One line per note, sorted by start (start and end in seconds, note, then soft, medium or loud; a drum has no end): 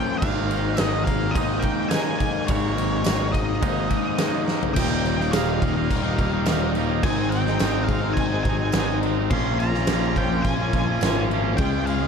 0.00 0.20 F3 medium
0.00 0.22 A#3 medium
0.00 0.23 A#3 medium
0.00 0.20 C#4 medium
0.00 0.21 C#4 medium
0.00 0.19 F4 medium
0.00 0.21 F4 medium
0.00 0.18 G5 loud
0.18 0.84 G#2 medium
0.18 0.82 F5 loud
0.18 kick loud
0.22 0.75 G#1 medium
0.22 0.77 D#3 medium
0.22 0.52 G#3 loud
0.22 0.51 A#3 medium
0.22 0.49 D#4 loud
0.22 crash loud
0.49 0.80 G#3 medium
0.49 0.81 A#3 medium
0.49 0.82 D#4 medium
0.49 ride medium
0.77 1.32 G#1 loud
0.77 1.35 D#3 medium
0.77 1.10 G#3 medium
0.77 snare loud
0.77 ride loud
0.77 tambourine loud
0.81 1.08 A#3 medium
0.81 1.06 D#4 loud
0.81 1.04 D#5 loud
1.05 1.39 D#4 medium
1.05 1.35 F5 medium
1.05 kick medium
1.05 ride medium
1.09 1.37 G#3 medium
1.09 1.38 A#3 medium
1.31 1.62 D#5 medium
1.36 1.62 G#1 medium
1.36 1.92 G#2 medium
1.36 1.91 D#3 loud
1.36 1.66 G#3 medium
1.36 1.65 A#3 loud
1.36 kick loud
1.36 ride loud
1.40 1.63 D#4 loud
1.59 1.96 D#4 medium
1.59 1.89 G5 medium
1.59 ride medium
1.64 1.93 G#3 medium
1.64 1.95 A#3 medium
1.64 kick medium
1.89 2.49 D#3 medium
1.89 2.18 G#5 loud
1.89 snare loud
1.89 ride loud
1.89 tambourine medium
1.94 2.22 G#3 medium
1.94 2.22 A#3 medium
1.94 2.20 D#4 medium
2.19 2.50 A#3 medium
2.19 2.51 D#4 medium
2.19 2.49 G#5 medium
2.19 kick medium
2.19 ride medium
2.24 2.49 G#3 soft
2.47 3.02 G#1 medium
2.47 3.06 G#2 medium
2.47 3.04 D#3 medium
2.47 2.79 G#3 medium
2.47 3.32 C#5 medium
2.47 kick loud
2.47 ride loud
2.51 2.77 A#3 loud
2.51 2.75 D#4 loud
2.76 3.05 G#3 medium
2.76 3.07 A#3 medium
2.76 3.07 D#4 medium
2.76 ride medium
3.04 3.60 G#1 medium
3.04 3.60 D#3 medium
3.04 3.34 G#3 medium
3.04 3.32 A#3 medium
3.04 snare loud
3.04 ride loud
3.04 tambourine loud
3.08 3.30 D#4 medium
3.32 3.61 G#3 medium
3.32 3.62 A#3 medium
3.32 3.62 D#4 medium
3.32 4.43 D#5 medium
3.32 kick medium
3.32 ride medium
3.60 3.89 G#1 medium
3.60 4.18 G#2 medium
3.60 4.17 D#3 medium
3.60 3.91 G#3 medium
3.60 3.89 A#3 medium
3.60 3.87 D#4 medium
3.60 kick loud
3.60 ride loud
3.88 4.17 G#3 medium
3.88 4.19 A#3 medium
3.88 4.20 D#4 medium
3.88 kick medium
3.88 ride medium
4.18 4.74 D#3 medium
4.18 4.47 G#3 medium
4.18 4.46 A#3 medium
4.18 4.44 D#4 medium
4.18 snare loud
4.18 ride medium
4.18 tambourine medium
4.45 4.75 G#3 medium
4.45 4.74 A#3 medium
4.45 4.73 D#4 medium
4.45 snare medium
4.63 floor tom medium
4.74 5.30 D#1 medium
4.74 5.18 D#2 medium
4.74 5.18 A#2 medium
4.74 4.91 D#3 medium
4.74 4.91 G3 loud
4.74 4.89 A#3 loud
4.74 4.89 D#4 medium
4.74 5.32 G5 loud
4.74 kick loud
4.74 crash loud
4.74 crash medium
4.89 5.20 D#3 medium
4.89 5.19 G3 medium
4.89 5.17 A#3 medium
4.89 5.16 D#4 medium
5.06 5.22 D#3 medium
5.06 5.22 G3 medium
5.06 5.20 A#3 medium
5.06 crash medium
5.10 5.20 D#4 medium
5.17 5.32 G3 medium
5.17 5.33 A#3 medium
5.17 5.34 D#4 medium
5.17 snare soft
5.21 5.31 D#3 medium
5.31 5.87 D#1 medium
5.31 5.89 D#2 loud
5.31 5.89 A#2 loud
5.31 5.57 D#3 loud
5.31 5.59 G3 loud
5.31 5.60 A#3 loud
5.31 5.61 D#4 loud
5.31 6.71 F5 loud
5.31 snare loud
5.31 tambourine loud
5.31 crash medium
5.58 5.75 D#3 medium
5.58 5.74 G3 medium
5.58 5.74 A#3 medium
5.58 5.72 D#4 medium
5.58 kick medium
5.62 crash medium
5.73 6.05 D#3 medium
5.73 6.04 G3 medium
5.73 6.03 A#3 medium
5.73 6.01 D#4 medium
5.91 6.44 D#1 loud
5.91 kick medium
5.91 crash medium
6.02 6.16 D#3 medium
6.02 6.17 G3 medium
6.02 6.18 A#3 medium
6.02 6.19 D#4 medium
6.17 6.33 D#3 medium
6.17 6.32 G3 medium
6.17 6.31 A#3 loud
6.17 6.30 D#4 medium
6.17 kick medium
6.17 crash medium
6.31 6.45 D#3 medium
6.31 6.46 G3 medium
6.31 6.47 A#3 medium
6.31 6.47 D#4 medium
6.45 7.00 D#1 medium
6.45 7.01 D#2 loud
6.45 7.01 A#2 medium
6.45 6.72 D#3 medium
6.45 6.74 G3 loud
6.45 6.75 A#3 loud
6.45 6.76 D#4 loud
6.45 snare loud
6.45 tambourine loud
6.45 crash medium
6.62 6.75 D#3 medium
6.62 6.75 G3 medium
6.62 6.76 A#3 medium
6.62 6.77 D#4 medium
6.74 6.90 D#3 medium
6.74 6.89 G3 medium
6.74 6.88 A#3 medium
6.74 6.87 D#4 medium
6.74 crash medium
6.88 7.03 D#3 medium
6.88 7.02 G3 medium
6.88 7.02 A#3 medium
6.88 7.01 D#4 medium
7.03 7.57 G#1 medium
7.03 7.46 G#2 medium
7.03 7.47 D#3 loud
7.03 7.21 G#3 loud
7.03 7.19 C4 loud
7.03 7.30 G#5 loud
7.03 kick loud
7.03 crash loud
7.07 7.17 D#4 loud
7.18 7.49 G#3 medium
7.18 7.47 C4 medium
7.18 7.45 D#4 medium
7.30 7.60 D#3 medium
7.30 7.49 G#3 medium
7.30 7.47 C4 medium
7.30 7.84 G5 loud
7.30 crash medium
7.35 7.45 D#4 medium
7.46 7.62 G#3 medium
7.46 7.62 C4 medium
7.46 7.62 D#4 medium
7.46 snare soft
7.60 8.14 G#1 medium
7.60 8.17 G#2 loud
7.60 7.86 D#3 loud
7.60 7.88 G#3 loud
7.60 7.89 C4 loud
7.60 7.90 D#4 loud
7.60 snare loud
7.60 tambourine loud
7.60 crash medium
7.84 8.31 D#3 medium
7.84 8.13 F5 medium
7.88 8.04 G#3 medium
7.88 8.02 C4 medium
7.88 8.00 D#4 medium
7.88 kick medium
7.88 crash medium
8.01 8.33 G#3 medium
8.01 8.31 C4 medium
8.01 8.29 D#4 medium
8.14 8.71 G#1 medium
8.14 8.42 G#5 loud
8.14 kick medium
8.14 crash medium
8.30 8.45 G#3 medium
8.30 8.45 C4 medium
8.30 8.46 D#4 medium
8.43 8.73 D#3 medium
8.43 8.63 G#3 medium
8.43 8.60 C4 medium
8.43 8.98 G#5 medium
8.43 kick medium
8.43 crash medium
8.48 8.58 D#4 medium
8.60 8.75 G#3 medium
8.60 8.75 C4 medium
8.60 8.76 D#4 medium
8.72 9.27 G#1 medium
8.72 9.29 G#2 medium
8.72 9.01 D#3 medium
8.72 9.03 G#3 loud
8.72 9.03 C4 loud
8.72 snare loud
8.72 tambourine loud
8.72 crash medium
8.77 9.04 D#4 medium
8.89 9.04 G#3 medium
8.89 9.03 C4 medium
8.89 9.05 D#4 medium
9.02 9.29 D#3 medium
9.02 9.21 G#3 medium
9.02 9.18 C4 medium
9.02 9.16 D#4 medium
9.02 crash medium
9.18 9.32 G#3 medium
9.18 9.31 C4 medium
9.18 9.30 D#4 medium
9.30 9.84 A#1 medium
9.30 9.73 A#2 loud
9.30 9.74 F3 loud
9.30 9.48 A#3 loud
9.30 9.46 C#4 medium
9.30 9.43 F4 loud
9.30 9.59 C6 loud
9.30 kick loud
9.30 crash loud
9.45 9.74 A#3 medium
9.45 9.73 C#4 medium
9.45 9.70 F4 medium
9.59 9.87 F3 medium
9.59 9.76 A#3 medium
9.59 9.74 C#4 medium
9.59 9.72 F4 medium
9.59 10.18 A#5 medium
9.59 crash medium
9.72 9.88 A#3 medium
9.72 9.88 C#4 medium
9.72 9.89 F4 medium
9.72 snare soft
9.86 10.41 A#1 medium
9.86 10.44 A#2 loud
9.86 10.13 F3 loud
9.86 10.16 A#3 loud
9.86 10.17 C#4 loud
9.86 10.17 F4 loud
9.86 snare loud
9.86 tambourine medium
9.86 crash medium
10.15 10.58 F3 medium
10.15 10.32 A#3 medium
10.15 10.31 C#4 medium
10.15 10.29 F4 medium
10.15 10.42 G5 medium
10.15 kick medium
10.15 crash medium
10.30 10.60 A#3 medium
10.30 10.59 C#4 medium
10.30 10.56 F4 medium
10.43 10.98 A#1 medium
10.43 11.25 G#5 medium
10.43 kick medium
10.43 crash medium
10.57 10.73 A#3 medium
10.57 10.74 C#4 medium
10.57 10.74 F4 medium
10.72 11.00 F3 medium
10.72 10.90 A#3 medium
10.72 10.88 C#4 loud
10.72 10.85 F4 medium
10.72 kick medium
10.72 crash medium
10.86 11.01 A#3 medium
10.86 11.02 C#4 medium
10.86 11.02 F4 medium
11.00 11.56 G#1 medium
11.00 11.56 A#2 medium
11.00 11.29 F3 medium
11.00 11.31 A#3 medium
11.00 11.32 C#4 medium
11.00 11.32 F4 medium
11.00 snare loud
11.00 tambourine medium
11.00 crash medium
11.16 11.31 A#3 medium
11.16 11.33 C#4 medium
11.16 11.32 F4 medium
11.30 11.57 F3 medium
11.30 11.47 A#3 medium
11.30 11.46 C#4 medium
11.30 11.43 F4 medium
11.30 crash medium
11.44 11.59 A#3 medium
11.44 11.60 C#4 medium
11.44 11.57 F4 medium
11.57 12.08 C#2 medium
11.57 12.01 C#3 medium
11.57 12.01 G#3 loud
11.57 11.74 C#4 loud
11.57 11.73 F4 loud
11.57 11.71 G#4 loud
11.57 11.86 G5 loud
11.57 kick loud
11.57 crash medium
11.72 12.03 C#4 medium
11.72 12.01 F4 medium
11.72 11.99 G#4 medium
11.86 12.08 G#3 medium
11.86 12.04 C#4 medium
11.86 12.02 F4 medium
11.86 12.01 G#4 medium
11.86 12.08 F5 medium
11.86 crash medium
12.01 12.08 C#4 medium
12.01 12.08 F4 medium
12.01 12.08 G#4 medium